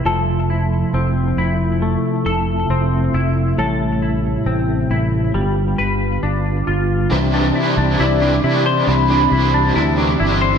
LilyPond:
<<
  \new Staff \with { instrumentName = "Soft synth lead" } { \time 4/4 \key c \major \tempo 4 = 68 r1 | r1 | r4 d''8 d''8 b''4. r8 | }
  \new Staff \with { instrumentName = "Clean electric guitar" } { \time 4/4 \key c \major <f a'>8 e'8 c'8 e'8 a8 a'8 c'8 e'8 | <a, a'>8 e'8 c'8 e'8 g8 b'8 d'8 f'8 | c16 d'16 e'16 d'16 e'16 d'16 e'16 c''16 c16 d'16 e'16 d'16 e'16 d'16 e'16 c''16 | }
  \new Staff \with { instrumentName = "Overdriven electric guitar" } { \time 4/4 \key c \major r1 | r1 | <c e g d' e' c''>8 <g d' e' c''>8 <c e g d' e' c''>8 <g d' e' c''>8 <g d' e' c''>8 <g d' e' c''>8 <c e g d' e' c''>8 <g d' e' c''>8 | }
  \new Staff \with { instrumentName = "Tonewheel organ" } { \time 4/4 \key c \major e'2 e'2 | e'2 f'2 | g'1 | }
  \new Staff \with { instrumentName = "Tonewheel organ" } { \clef bass \time 4/4 \key c \major << { <c a>1~ | <c a>2 <d b>2 | <e d'>1 | } \\ { f1 | g1 | c'1 | } >> }
  \new Staff \with { instrumentName = "Fingered electric bass" } { \clef bass \time 4/4 \key c \major f,,4 f,,8 f,,8. r16 f,,8 f,,8 f,,8 | a,,4 a,,8 a,,8 g,,8 g,,8 g,,8 g,,8 | c,8 r16 c,16 c,8 c8 c,8 c,8 d,8 g,,8 | }
>>